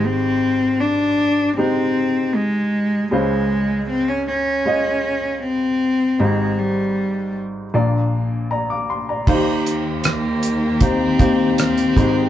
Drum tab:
CC |----------------|----------------|----------------|x---------------|
HH |----------------|----------------|----------------|--x-x-x-x-x-xxx-|
SD |----------------|----------------|----------------|----r-------r---|
BD |----------------|----------------|----------------|o-------o-o---o-|